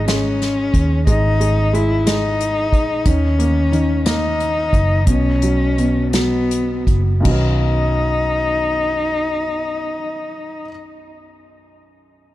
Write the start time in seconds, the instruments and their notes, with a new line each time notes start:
Already playing: fingered electric bass G#1, felt piano G#3
0.08 felt piano G#3, cello C#4, snare, closed hi-hat
0.42 snare, closed hi-hat
0.74 fingered electric bass D#2, kick, closed hi-hat
1.07 fingered electric bass G#1, felt piano G#3, cello D#4, kick, closed hi-hat
1.40 felt piano G#3, closed hi-hat
1.73 felt piano G#3, cello E4, closed hi-hat
2.06 felt piano G#3, cello D#4, snare, closed hi-hat
2.41 closed hi-hat
2.73 fingered electric bass A#1, kick, closed hi-hat
3.06 fingered electric bass D#2, felt piano D#3, cello C#4, kick, closed hi-hat
3.39 felt piano A#3, closed hi-hat
3.72 felt piano D#3, closed hi-hat
4.06 felt piano A#3, cello D#4, snare, closed hi-hat
4.40 closed hi-hat
4.73 fingered electric bass F#1, kick, closed hi-hat
5.07 fingered electric bass B1, felt piano B2, cello C#4, kick, closed hi-hat
5.42 felt piano F#3, closed hi-hat
5.78 felt piano B2, closed hi-hat
6.13 felt piano F#3, cello B3, snare, closed hi-hat
6.51 closed hi-hat
6.87 fingered electric bass F#1, kick, closed hi-hat
7.20 felt piano B1 F#2
7.24 fingered electric bass B1, felt piano D#3 F#3, cello D#4, kick, crash
7.29 felt piano B3 C#4